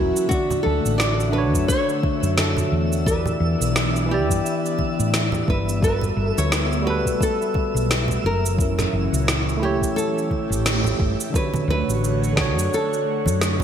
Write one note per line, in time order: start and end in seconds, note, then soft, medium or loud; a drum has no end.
0.00 0.10 E1 medium
0.00 0.27 E3 medium
0.00 0.32 F#3 medium
0.00 0.27 A#3 medium
0.00 0.32 C#4 medium
0.00 0.32 E4 medium
0.00 0.28 F#4 medium
0.00 3.02 F#4 medium
0.00 0.32 A#4 loud
0.00 0.28 C#5 medium
0.00 3.03 E5 medium
0.16 cabasa medium
0.26 1.28 D3 medium
0.26 3.03 A3 medium
0.26 1.30 D4 medium
0.26 0.63 F#4 medium
0.26 11.35 E5 medium
0.30 3.03 D3 medium
0.30 1.31 F#4 medium
0.30 1.32 D5 medium
0.30 kick loud
0.30 cabasa medium
0.51 low conga medium
0.51 cabasa soft
0.63 0.79 D2 medium
0.63 0.98 A4 medium
0.85 1.54 A1 medium
0.85 cabasa medium
0.98 1.33 D5 loud
0.98 snare medium
0.98 cabasa medium
1.20 cabasa soft
1.30 3.01 D3 medium
1.30 3.02 D4 medium
1.30 1.68 B4 medium
1.35 3.04 F#4 medium
1.35 3.05 C#5 loud
1.54 1.64 F#2 medium
1.54 kick medium
1.54 cabasa medium
1.68 2.38 C#5 loud
1.68 kick loud
1.68 cabasa medium
1.89 cabasa soft
2.03 kick loud
2.03 high conga medium
2.22 2.65 F#2 medium
2.22 cabasa medium
2.38 3.06 A4 medium
2.38 snare medium
2.38 high conga medium
2.38 cabasa medium
2.57 low conga medium
2.57 cabasa soft
2.72 3.34 E2 medium
2.92 cabasa medium
3.03 4.05 E3 medium
3.03 5.80 E3 medium
3.03 5.80 B3 medium
3.03 5.79 D4 medium
3.03 4.06 E4 medium
3.03 3.71 B4 medium
3.03 kick loud
3.08 4.07 G4 medium
3.08 4.09 D5 medium
3.08 cabasa soft
3.26 low conga medium
3.26 cabasa soft
3.40 3.54 E2 medium
3.60 4.30 B1 medium
3.60 cabasa medium
3.76 snare medium
3.76 cabasa medium
3.96 cabasa soft
4.06 5.77 E3 medium
4.06 5.78 E4 medium
4.11 5.53 G4 medium
4.11 5.79 G4 medium
4.11 5.81 D5 loud
4.30 4.40 G2 medium
4.30 kick medium
4.30 cabasa medium
4.46 cabasa medium
4.66 cabasa soft
4.79 kick medium
4.79 high conga medium
4.99 5.41 A2 medium
4.99 cabasa medium
5.13 snare medium
5.13 high conga soft
5.13 cabasa soft
5.32 low conga medium
5.32 cabasa soft
5.48 6.10 G1 medium
5.48 5.83 B4 medium
5.48 kick loud
5.69 cabasa medium
5.79 6.80 G3 medium
5.79 8.21 A3 medium
5.79 8.21 B3 medium
5.79 6.82 F#4 medium
5.79 kick loud
5.84 6.83 A4 medium
5.84 6.38 B4 medium
5.84 6.84 B4 medium
5.84 cabasa medium
6.01 low conga medium
6.01 cabasa soft
6.17 6.30 G1 loud
6.38 7.06 D2 medium
6.38 6.86 C#5 loud
6.38 cabasa medium
6.52 snare loud
6.52 cabasa medium
6.72 cabasa soft
6.82 8.20 G3 loud
6.82 8.21 F#4 medium
6.87 8.23 A4 medium
6.87 7.18 B4 loud
6.87 8.24 B4 loud
7.06 7.16 B1 loud
7.06 kick medium
7.06 cabasa medium
7.21 8.26 A4 medium
7.21 kick medium
7.21 cabasa medium
7.42 cabasa soft
7.54 kick medium
7.54 high conga medium
7.74 8.16 B1 medium
7.74 cabasa medium
7.89 snare medium
7.89 high conga soft
7.89 cabasa medium
8.08 low conga medium
8.08 cabasa soft
8.23 8.86 F#1 medium
8.23 9.94 A#2 medium
8.23 11.31 E3 medium
8.23 9.94 F#3 medium
8.23 11.31 C#4 medium
8.23 9.24 A#4 medium
8.46 cabasa medium
8.54 9.56 F#3 medium
8.54 9.57 C#4 medium
8.58 9.58 E4 medium
8.58 9.60 A#4 medium
8.58 kick loud
8.58 cabasa medium
8.79 snare soft
8.79 low conga medium
8.79 cabasa soft
8.93 9.07 F#1 loud
9.12 9.82 C#2 medium
9.12 cabasa medium
9.28 snare medium
9.28 cabasa medium
9.49 cabasa soft
9.57 11.28 A3 medium
9.57 11.30 E4 medium
9.62 11.31 G4 medium
9.62 9.98 G4 medium
9.62 11.32 C#5 loud
9.82 9.92 A#1 loud
9.82 kick medium
9.82 cabasa medium
9.96 11.33 A3 medium
9.96 11.33 G4 medium
9.96 10.96 A4 loud
9.96 cabasa medium
10.18 cabasa soft
10.31 kick medium
10.31 high conga medium
10.50 10.92 A1 medium
10.50 cabasa medium
10.65 snare medium
10.65 high conga medium
10.65 cabasa medium
10.84 low conga medium
10.84 cabasa soft
11.00 11.13 G1 loud
11.00 kick loud
11.20 cabasa medium
11.30 12.32 D3 medium
11.30 12.33 D4 medium
11.30 kick loud
11.34 13.64 D3 medium
11.34 13.64 A3 medium
11.34 13.64 F#4 medium
11.34 12.34 F#4 medium
11.34 11.69 B4 loud
11.34 13.64 C#5 medium
11.34 12.36 C#5 medium
11.34 cabasa medium
11.54 high conga medium
11.54 low conga medium
11.54 cabasa soft
11.68 11.82 D2 loud
11.68 12.74 B4 loud
11.88 12.56 A1 medium
11.88 cabasa medium
12.04 cabasa medium
12.24 cabasa soft
12.33 13.64 D3 medium
12.33 13.64 D4 medium
12.33 high conga medium
12.37 13.64 F#4 medium
12.37 kick medium
12.37 snare medium
12.41 13.64 C#5 loud
12.56 12.67 F#2 loud
12.56 cabasa medium
12.73 13.38 A4 medium
12.73 cabasa medium
12.93 cabasa soft
13.26 13.64 F#2 medium
13.26 high conga medium
13.26 cabasa medium
13.41 snare medium
13.41 cabasa medium
13.60 low conga medium